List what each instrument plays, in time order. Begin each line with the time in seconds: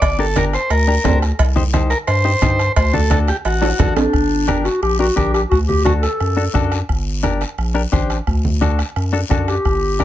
0.02 analog synth bass G1, transistor combo organ D5, bombo low, bombo rim, cowbell, long guiro
0.19 clean electric guitar D4 G4 A#4, transistor combo organ A4
0.36 clean electric guitar D4 G4 A#4, transistor combo organ A#4, bombo rim, cowbell, high conga, short guiro
0.53 transistor combo organ C5, bombo rim, short guiro
0.70 analog synth bass D2, transistor combo organ A#4, bombo rim, cowbell, long guiro
0.88 clean electric guitar D4 G4 A#4
1.04 analog synth bass D2, clean electric guitar D4 G4 C5, bombo low, bombo rim, cowbell, high conga, low conga, low timbale, short guiro
1.22 bombo rim, short guiro
1.39 analog synth bass C2, bombo low, bombo rim, cowbell, long guiro
1.56 clean electric guitar D#4 G4 C5, high conga
1.73 clean electric guitar D#4 G4 C5, bombo rim, cowbell, high conga, short guiro
1.90 transistor combo organ A#4, bombo rim, short guiro
2.07 analog synth bass G2, transistor combo organ C5, bombo rim, cowbell, long guiro
2.25 clean electric guitar D#4 G4 C5
2.42 analog synth bass G2, clean electric guitar D#4 G4 C5, bombo low, bombo rim, cowbell, high conga, short guiro
2.59 bombo rim, short guiro
2.76 analog synth bass D2, transistor combo organ C5, bombo low, bombo rim, cowbell, long guiro
2.93 clean electric guitar D4 F#4 A4, transistor combo organ A4, high conga
3.10 clean electric guitar D4 F#4 A4, transistor combo organ A4, bombo rim, cowbell, high conga, short guiro
3.28 transistor combo organ G4, bombo rim, short guiro
3.45 analog synth bass A1, transistor combo organ F#4, bombo rim, cowbell, long guiro
3.61 clean electric guitar D4 F#4 A4, high timbale
3.79 analog synth bass A1, clean electric guitar D4 F#4 A4, bombo low, bombo rim, cowbell, high conga, low conga, short guiro
3.96 clarinet D4, bombo rim, low timbale, short guiro
4.13 analog synth bass G1, bombo low, bombo rim, long guiro
4.48 clean electric guitar D4 G4 A#4, bombo rim, high conga, short guiro
4.65 clarinet F#4, bombo rim, short guiro
4.82 analog synth bass A#1, clarinet G4, bombo rim, long guiro
4.99 clean electric guitar D4 G4 A#4, clarinet F#4
5.16 analog synth bass A#1, clean electric guitar D4 G4 A#4, clarinet G4, bombo low, bombo rim, high conga, short guiro
5.33 clarinet G4, bombo rim, short guiro
5.50 analog synth bass D2, clarinet F#4, bombo low, bombo rim, long guiro
5.68 clarinet G4, high conga
5.85 clean electric guitar D4 F#4 A4, clarinet F#4, bombo rim, high conga, short guiro
6.02 clarinet A4, bombo rim, short guiro
6.20 analog synth bass F#2, bombo rim, long guiro
6.37 clean electric guitar D4 F#4 A4
6.54 analog synth bass F#2, clean electric guitar D4 F#4 A4, bombo low, bombo rim, high conga, short guiro
6.72 bombo rim, short guiro
6.89 analog synth bass G1, bombo low, bombo rim, long guiro
7.23 clean electric guitar D4 G4 A#4, bombo rim, high conga, short guiro
7.41 bombo rim, short guiro
7.58 analog synth bass A#1, bombo rim, long guiro
7.74 clean electric guitar D4 G4 A#4
7.92 analog synth bass A1, clean electric guitar D4 G4 C5, bombo low, bombo rim, high conga, short guiro
8.10 bombo rim, short guiro
8.27 analog synth bass D2, bombo low, bombo rim, long guiro
8.45 high conga
8.61 clean electric guitar D4 F#4 A4, bombo rim, high conga, short guiro
8.79 bombo rim, short guiro
8.96 analog synth bass F#2, bombo rim, long guiro
9.13 clean electric guitar D4 F#4 A4
9.30 analog synth bass F#2, clean electric guitar D4 F#4 A4, bombo low, bombo rim, high conga, short guiro
9.48 clarinet G4, bombo rim, short guiro
9.65 analog synth bass G1, bombo low, bombo rim, long guiro
10.00 clean electric guitar D4 G4 A#4, bombo rim, high conga, short guiro